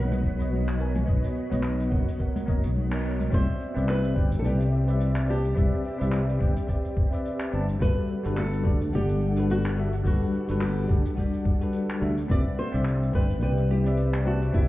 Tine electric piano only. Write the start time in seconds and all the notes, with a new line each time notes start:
Already playing: B3 B4 C#5 F#5
0.38 B3 B4 C#5 D#5
0.78 B3 A#4 C#5 G#5
1.06 B3 B4 C#5 D#5
1.50 B3 B4 C#5 D#5
1.90 B3 A#4 C#5 F#5
2.18 B3 A#4 C#5 F#5
2.46 B3 A#4 C#5 D#5
2.90 B3 A#4 C#5 D#5
3.30 C4 C5 D5 E5
3.75 C4 B4 D5 E5
4.15 C4 B4 D5 G5
4.43 C4 B4 D5 G5
4.87 C4 B4 D5 E5
5.27 C4 B4 D5 A5
5.55 C4 B4 D5 E5
5.99 C4 B4 D5 E5
6.39 C4 B4 D5 G5
6.67 C4 B4 D5 G5
7.11 C4 B4 D5 E5
7.51 C4 B4 D5 A5
7.79 G3 F#4 A4 B4
8.23 G3 F#4 A4 B4
8.64 G3 F#4 A4 D5
8.92 G3 A4 D5 F#5
9.36 G3 F#4 A4 B4
9.76 G3 F#4 A4 E5
10.04 G3 F#4 A4 B4
10.48 G3 F#4 A4 B4
10.88 G3 F#4 A4 D5
11.16 G3 F#4 A4 D5
11.60 G3 F#4 A4 B4
12.00 G3 F#4 A4 E5
12.28 C4 B4 D5 E5
12.72 C4 C5 D5 E5
13.12 C4 B4 D5 G5
13.40 C4 B4 D5 G5
13.84 C4 B4 D5 E5
14.24 C4 B4 D5 A5
14.52 C4 B4 D5 E5